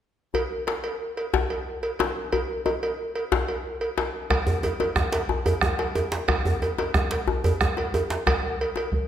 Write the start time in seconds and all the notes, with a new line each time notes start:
0.34 cowbell, djembe bass
0.67 cowbell, djembe slap
0.84 cowbell
1.17 cowbell, djembe slap
1.34 djembe slap, djembe tone, djembe bass
1.50 cowbell
1.83 cowbell
1.99 cowbell, djembe slap, djembe tone
2.32 cowbell, djembe bass
2.66 cowbell, djembe tone
2.83 cowbell
3.15 cowbell, djembe slap
3.32 djembe slap, djembe tone, djembe bass
3.48 cowbell
3.81 cowbell
3.98 cowbell, djembe slap, djembe tone
4.30 bombo rim, bombo low, cowbell, djembe slap, djembe tone, djembe bass
4.47 djembe slap, djembe bass
4.63 cowbell, djembe slap, djembe tone
4.80 cowbell, djembe slap, djembe tone
4.96 bombo rim, bombo low, djembe tone
5.12 cowbell, djembe slap
5.29 djembe slap, djembe tone, djembe bass
5.45 bombo rim, cowbell, djembe bass
5.61 bombo rim, bombo low, djembe tone
5.79 cowbell, djembe slap, djembe tone
5.95 cowbell, djembe tone
6.12 bombo rim, djembe slap
6.28 bombo rim, bombo low, cowbell, djembe slap, djembe tone, djembe bass
6.45 djembe slap, djembe bass
6.61 cowbell, djembe slap, djembe tone
6.78 cowbell, djembe slap, djembe tone
6.94 bombo rim, bombo low, djembe tone
7.11 cowbell, djembe slap
7.27 djembe slap, djembe tone, djembe bass
7.44 bombo rim, cowbell, djembe bass
7.61 bombo rim, bombo low, djembe tone
7.77 cowbell, djembe slap, djembe tone
7.94 cowbell, djembe tone
8.10 bombo rim, djembe slap
8.27 bombo rim, bombo low, cowbell, djembe slap, djembe tone, djembe bass
8.43 djembe slap
8.59 cowbell, djembe slap
8.76 cowbell, djembe slap, djembe tone
8.92 bombo low